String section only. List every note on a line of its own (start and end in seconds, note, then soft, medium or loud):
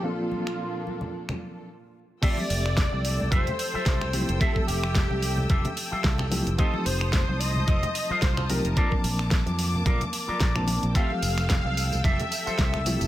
0.00 1.64 A4 medium
0.04 1.66 A#2 medium
0.04 1.66 A#3 medium
0.04 1.66 D4 medium
2.23 6.55 A4 medium
2.23 6.55 G5 medium
2.23 6.55 E6 medium
6.58 8.75 C5 medium
6.58 10.91 A5 medium
6.58 8.75 D#6 loud
8.76 10.93 A#3 medium
8.76 10.93 D6 medium
10.95 13.07 A4 medium
10.95 13.07 G5 medium
10.95 13.07 E6 medium